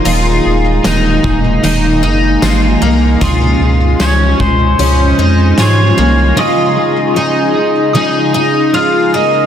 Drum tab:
HH |x-x-x-x-|x-x-x-x-|--------|
TB |--x---x-|--x---x-|--------|
SD |--o---o-|--o---o-|--------|
BD |---o----|o--o----|--------|